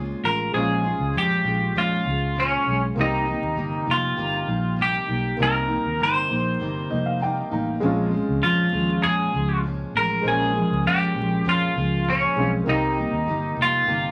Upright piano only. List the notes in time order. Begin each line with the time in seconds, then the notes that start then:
Already playing: G#3 C4 C#4 F4
0.52 G#3 C#4 C5
0.57 F4
2.95 A#3 C4 D#4
3.00 G4
5.37 A#3 C4 D#4
5.42 A#4
6.91 D#5
7.06 F5
7.22 G5
7.53 A#5
7.80 G#3 C4 C#4
7.85 F4
10.21 G#3 C#4 C5
10.26 A#4
12.36 G#3 C4 C#4 F4
12.64 A#3 C4 D#4
12.69 G4